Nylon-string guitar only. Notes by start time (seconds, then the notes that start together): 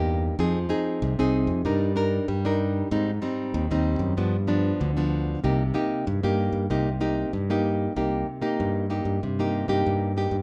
Already playing: G2 A#3 D#4 G4
0.39 F3 C4 D#4 G#4
0.69 C4 D#4 G#4
1.02 C3
1.19 C4 D#4 G#4
1.65 G3 D4 D#4 A#4
1.96 D4 D#4 A#4
2.28 G3
2.45 D4 D#4 A#4
2.91 G#2 G3 C4 D#4
3.22 G3 C4 D#4
3.55 D#3
3.71 G3 C4 D#4
4.17 G2 F3 B3 D4
4.47 F3 B3 D4
4.80 D3
4.97 F3 B3 D4
5.44 C3 A#3 D#4 G4
5.74 A#3 D#4 G4
6.07 G2
6.23 A#3 D#4 G4
6.70 C3 A#3 D#4 G4
7.01 A#3 D#4 G4
7.33 G2
7.50 A#3 D#4 G4
7.96 C3 A#3 D#4 G4
8.42 A#3 D#4 G4
8.60 G2
8.90 A#3 D#4 G4
9.23 C3
9.39 A#3 D#4 G4
9.68 A#3 D#4 G4
9.86 G2
10.17 A#3 D#4 G4